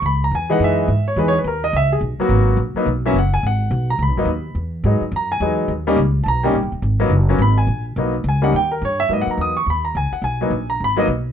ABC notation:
X:1
M:4/4
L:1/8
Q:"Swing" 1/4=212
K:G#m
V:1 name="Grand piano"
b a g f e3 c | (3B c B A d e G z2 | z4 z e f g | f3 a b4 |
z4 a g2 z | z4 [=a^a] =g2 z | z4 b g2 z | z2 g f =g A c e |
(3d f a d' c' b a g f | g3 a b d z2 |]
V:2 name="Grand piano"
z3 [E,G,B,D]3 z2 | [E,G,B,D] z6 [F,A,B,F]- | [F,A,B,F]2 z [F,A,B,D] z [F,A,B,C] z2 | z4 z [F,A,B,D] z2 |
z2 [F,G,B,D] z3 [F,G,B,D]2 | z [=G,A,CD] z3 [G,A,CD] z2 | z [F,A,B,D] z [F,A,B,C] z4 | [F,A,B,D] z2 [=G,A,CD] z4 |
[F,A,B,D]3 z4 z | z [F,A,B,D] z3 [F,A,B,D] z2 |]
V:3 name="Upright bass" clef=bass
C,,2 E,,2 F,,2 G,,2 | E,,2 D,,2 C,,2 B,,, z | G,,,2 A,,, z B,,,2 F,,,2 | G,,,2 B,,,2 (3C,, B,,, G,,, D,,2 |
E,,2 G,, z F,,2 E,,2 | D,,2 C,,2 B,,,2 (3A,,, =G,,, D,,, | G,,,2 F,,,2 G,,,2 A,,,2 | B,,,2 C,,2 D,,2 =G,,2 |
G,, z E,,2 D,,2 C,, z | B,,,2 A,,,2 G,,,2 B,,,2 |]